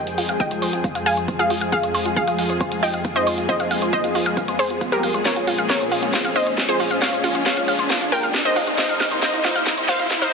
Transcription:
Already playing: analog synth pad F2 F3 G#3 G#4 G5, synth pluck D#5 G5, riser
0.07 synth arpeggio sound F4, closed hi-hat
0.18 synth arpeggio sound F4, open hi-hat
0.29 synth arpeggio sound F5, closed hi-hat
0.40 synth pluck D#5 G5, synth arpeggio sound F5, kick, closed hi-hat
0.51 synth arpeggio sound C5, closed hi-hat
0.62 synth arpeggio sound C5, open hi-hat
0.73 synth arpeggio sound F4, closed hi-hat
0.84 synth arpeggio sound F4, kick, closed hi-hat
0.95 synth arpeggio sound F5, closed hi-hat
1.06 synth pluck F5 G#5, synth arpeggio sound F5, open hi-hat
1.17 synth arpeggio sound C5, closed hi-hat
1.28 synth arpeggio sound C5, kick, closed hi-hat
1.39 synth arpeggio sound F4, synth pluck G#4 F5, closed hi-hat
1.50 synth arpeggio sound F4, open hi-hat
1.61 synth arpeggio sound F5, closed hi-hat
1.72 analog synth pad F4, synth pluck G#4 F5, synth arpeggio sound F5, kick, closed hi-hat
1.83 synth arpeggio sound C5, closed hi-hat
1.94 synth arpeggio sound C5, open hi-hat
2.06 synth arpeggio sound F4, closed hi-hat
2.16 synth arpeggio sound F4, synth pluck G#4 F5, kick, closed hi-hat
2.28 synth arpeggio sound F5, closed hi-hat
2.39 synth arpeggio sound F5, open hi-hat
2.50 synth arpeggio sound C5, closed hi-hat
2.61 synth arpeggio sound C5, kick, closed hi-hat
2.72 synth arpeggio sound F4, closed hi-hat
2.83 synth arpeggio sound F4, synth pluck D#5 G5, open hi-hat
2.94 synth arpeggio sound F5, closed hi-hat
3.05 synth arpeggio sound F5, kick, closed hi-hat
3.16 synth arpeggio sound C5, synth pluck C5 D#5, closed hi-hat
3.27 synth arpeggio sound C5, open hi-hat
3.38 synth arpeggio sound F4, closed hi-hat
3.49 synth arpeggio sound F4, synth pluck C5 D#5, kick, closed hi-hat
3.60 synth arpeggio sound F5, closed hi-hat
3.71 synth arpeggio sound F5, open hi-hat
3.82 synth arpeggio sound C5, closed hi-hat
3.93 synth pluck C5 D#5, synth arpeggio sound C5, kick, closed hi-hat
4.04 synth arpeggio sound F4, closed hi-hat
4.15 synth arpeggio sound F4, open hi-hat
4.26 synth arpeggio sound F5, closed hi-hat
4.37 synth arpeggio sound F5, kick, closed hi-hat
4.48 synth arpeggio sound C5, closed hi-hat
4.59 synth pluck G#4 C5, synth arpeggio sound C5, open hi-hat
4.70 synth arpeggio sound F4, closed hi-hat
4.81 synth arpeggio sound F4, kick, closed hi-hat
4.92 synth pluck G4 A#4, synth arpeggio sound F5, closed hi-hat
5.03 synth arpeggio sound F5, open hi-hat
5.14 synth arpeggio sound C5, closed hi-hat
5.25 analog synth pad A#2 F3 C#4, synth arpeggio sound F4, synth pluck A#4 C#5, kick, snare, closed hi-hat
5.36 synth arpeggio sound F4, closed hi-hat
5.47 synth arpeggio sound F4, open hi-hat
5.58 synth arpeggio sound F5, closed hi-hat
5.69 synth pluck A#4 C#5, synth arpeggio sound F5, kick, snare, closed hi-hat
5.80 synth arpeggio sound C5, closed hi-hat
5.91 synth arpeggio sound F4, open hi-hat
6.02 synth arpeggio sound F4, closed hi-hat
6.14 synth arpeggio sound F4, kick, snare, closed hi-hat
6.25 synth arpeggio sound F5, closed hi-hat
6.36 synth pluck C5 D#5, synth arpeggio sound F5, open hi-hat
6.47 synth arpeggio sound C5, closed hi-hat
6.58 synth arpeggio sound F4, kick, snare, closed hi-hat
6.69 synth arpeggio sound F4, synth pluck G#4 C5, closed hi-hat
6.80 synth arpeggio sound F4, open hi-hat
6.91 synth arpeggio sound F5, closed hi-hat
7.02 synth pluck C#5 F5, synth arpeggio sound F5, kick, snare, closed hi-hat
7.13 synth arpeggio sound C5, closed hi-hat
7.24 synth arpeggio sound F4, open hi-hat
7.35 synth arpeggio sound F4, closed hi-hat
7.46 synth arpeggio sound F4, synth pluck C#5 F5, kick, snare, closed hi-hat
7.57 synth arpeggio sound F5, closed hi-hat
7.68 synth arpeggio sound F5, open hi-hat
7.79 synth arpeggio sound C5, closed hi-hat
7.90 synth arpeggio sound F4, kick, snare, closed hi-hat
8.01 synth arpeggio sound F4, closed hi-hat
8.12 synth arpeggio sound F4, synth pluck A#4 G5, open hi-hat
8.23 synth arpeggio sound F5, closed hi-hat
8.34 synth arpeggio sound F5, kick, snare, closed hi-hat
8.45 synth pluck C5 D#5, synth arpeggio sound C5, closed hi-hat
8.56 synth arpeggio sound F4, open hi-hat
8.67 synth arpeggio sound F4, closed hi-hat
8.78 analog synth pad C3 G3 A#3 D#4 C5, synth arpeggio sound F4, synth pluck C5 D#5, kick, snare, closed hi-hat
8.89 synth arpeggio sound F5, closed hi-hat
9.00 synth arpeggio sound F5, snare, open hi-hat
9.11 synth arpeggio sound C5, closed hi-hat
9.22 synth arpeggio sound F4, synth pluck C5 D#5, kick, snare, closed hi-hat
9.33 synth arpeggio sound F4, closed hi-hat
9.44 synth arpeggio sound F4, snare, open hi-hat
9.55 synth arpeggio sound F5, closed hi-hat
9.67 synth arpeggio sound F5, kick, snare, closed hi-hat
9.78 synth arpeggio sound C5, closed hi-hat
9.89 synth arpeggio sound F4, synth pluck C5 F5, snare, open hi-hat
10.00 synth arpeggio sound F4, closed hi-hat
10.11 synth arpeggio sound F4, kick, snare, closed hi-hat
10.22 synth pluck D#4 C5, synth arpeggio sound F5, closed hi-hat

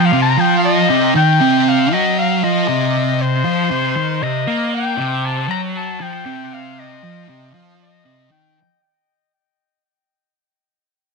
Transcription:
Already playing: distorted electric guitar F3
0.05 soprano saxophone F5
0.13 distorted electric guitar C3
0.22 soprano saxophone A#5
0.38 distorted electric guitar F3, soprano saxophone G5
0.57 soprano saxophone F5
0.65 soprano saxophone D#5
0.90 distorted electric guitar C3
1.15 distorted electric guitar D#3, soprano saxophone G5
1.41 distorted electric guitar C3
1.69 soprano saxophone F5
1.93 distorted electric guitar F#3, soprano saxophone D#5
2.18 soprano saxophone F5
2.44 distorted electric guitar F3, soprano saxophone D#5
2.68 distorted electric guitar C3
3.21 soprano saxophone C5
3.45 distorted electric guitar F3
3.71 distorted electric guitar C3
3.97 distorted electric guitar D#3
4.22 distorted electric guitar C3, soprano saxophone D#5
4.47 distorted electric guitar A#3
4.75 soprano saxophone G5
4.97 distorted electric guitar C3
5.25 soprano saxophone A5
5.48 distorted electric guitar F#3, soprano saxophone A#5
5.76 soprano saxophone A5
6.00 distorted electric guitar F3, soprano saxophone G5
6.25 distorted electric guitar C3
6.53 soprano saxophone F5
6.80 soprano saxophone D#5
7.03 distorted electric guitar F3
7.28 distorted electric guitar C3
7.53 distorted electric guitar F3
7.81 soprano saxophone D#5
8.05 distorted electric guitar C3
8.31 distorted electric guitar D#3, soprano saxophone G5

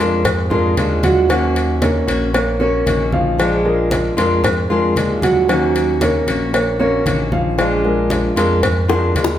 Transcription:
Already playing: analog synth bass F2
0.00 grand piano G#3 G#4 A#4, steel-string acoustic guitar G#3 D4 F4
0.25 muted steel-string acoustic guitar stroke, cowbell, high conga, low conga
0.50 grand piano G#3 G#4 A#4, steel-string acoustic guitar G#3 D4 F4, high conga, low conga
0.77 analog synth bass D#2, steel-string acoustic guitar F3 G#3 D4 F4, cowbell, high conga
1.03 grand piano F#3 F#4 F#5, cowbell, high conga
1.29 steel-string acoustic guitar D#3 A#3 C#4 F#4, grand piano F#3 F#4 F#5, cowbell, high conga
1.56 cowbell, high conga
1.82 grand piano A#3 A#4 C#5, cowbell, high conga
2.07 analog synth bass A#1, steel-string acoustic guitar A#3 C#4 F#4, cowbell, high conga
2.34 grand piano A#3 A#4 C#5, muted steel-string acoustic guitar stroke, cowbell, high conga
2.60 grand piano A#3 A#4 C#5, steel-string acoustic guitar A#3 C#4 F#4, high conga
2.86 analog synth bass A#1, steel-string acoustic guitar D#3 A#3 C#4 F#4, cowbell, high conga
3.12 grand piano F3 F5, high conga
3.38 steel-string acoustic guitar F3 G#3 D4 F4, cowbell, high conga
3.65 grand piano G#3 G#4 A#4, high conga
3.91 cowbell, high conga
4.17 analog synth bass F2, grand piano G#3 G#4 A#4, steel-string acoustic guitar G#3 D4 F4, cowbell, high conga
4.44 muted steel-string acoustic guitar stroke, cowbell, high conga, low conga
4.69 analog synth bass F2, grand piano G#3 G#4 A#4, steel-string acoustic guitar G#3 D4 F4, high conga
4.96 analog synth bass D#2, steel-string acoustic guitar F3 G#3 D4 F4, cowbell, high conga
5.22 grand piano F#3 F#4 F#5, cowbell, high conga
5.48 steel-string acoustic guitar D#3 A#3 C#4 F#4, grand piano F#3 F#4 F#5, cowbell, high conga
5.75 cowbell, high conga
6.01 grand piano A#3 A#4 C#5, cowbell, high conga
6.27 analog synth bass A#1, steel-string acoustic guitar A#3 C#4 F#4, cowbell, high conga
6.53 grand piano A#3 A#4 C#5, muted steel-string acoustic guitar stroke, cowbell, high conga
6.79 grand piano A#3 A#4 C#5, steel-string acoustic guitar A#3 C#4 F#4, high conga
7.05 analog synth bass A#1, steel-string acoustic guitar D#3 A#3 C#4 F#4, cowbell, high conga
7.32 grand piano F3 F5, high conga
7.58 steel-string acoustic guitar F3 G#3 D4 F4, cowbell, high conga
7.85 grand piano G#3 G#4 A#4, high conga
8.10 cowbell, high conga
8.36 analog synth bass F2, grand piano G#3 G#4 A#4, steel-string acoustic guitar G#3 D4 F4, cowbell, high conga
8.63 muted steel-string acoustic guitar stroke, cowbell, high conga, low conga
8.88 grand piano G#3 G#4 A#4, steel-string acoustic guitar G#3 D4 F4, high bongo, high conga
9.15 analog synth bass D#2, steel-string acoustic guitar F3 G#3 D4 F4, cowbell, high conga
9.24 low bongo

